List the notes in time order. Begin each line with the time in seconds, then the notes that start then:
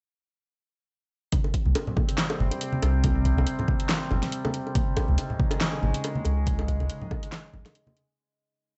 1.32 C3 G3 C4, kick, closed hi-hat, high conga
1.44 high bongo
1.54 kick, closed hi-hat
1.66 C2, high conga
1.75 closed hi-hat, high bongo
1.87 low conga
1.97 kick, high bongo, high conga
2.09 closed hi-hat
2.18 snare, clap, closed hi-hat
2.30 high bongo
2.40 G1, high conga, low conga
2.51 closed hi-hat, high bongo
2.61 closed hi-hat
2.72 high conga
2.82 C2, closed hi-hat, high bongo
3.04 kick, closed hi-hat, high bongo, high conga
3.25 kick, closed hi-hat
3.37 C2, high bongo, high conga
3.47 closed hi-hat
3.59 high bongo, low conga
3.68 kick, high conga
3.80 closed hi-hat
3.89 snare, clap, closed hi-hat, high bongo
4.11 G1, high bongo, high conga, low conga
4.23 snare, closed hi-hat
4.32 closed hi-hat
4.45 high bongo, high conga
4.54 closed hi-hat
4.67 high bongo
4.75 C#3 G#3 D#4, kick, closed hi-hat, high conga
4.97 kick, closed hi-hat, high bongo
5.08 C#2, high conga
5.18 closed hi-hat, high bongo
5.30 low conga
5.39 kick, high conga
5.51 closed hi-hat, high bongo
5.61 snare, clap, closed hi-hat
5.73 high bongo
5.82 G#1, high conga, low conga
5.94 closed hi-hat
6.04 closed hi-hat, high bongo
6.15 high conga
6.25 C#2, closed hi-hat, high bongo
6.46 kick, closed hi-hat, high conga
6.59 high bongo
6.68 kick, closed hi-hat
6.80 C#2, high bongo, high conga
6.90 closed hi-hat
7.01 low conga
7.11 kick, high bongo, high conga
7.23 closed hi-hat
7.32 snare, clap, closed hi-hat, high bongo
7.53 G#1, high conga, low conga
7.65 snare, closed hi-hat, high bongo
7.75 closed hi-hat
7.87 high bongo, high conga
7.97 closed hi-hat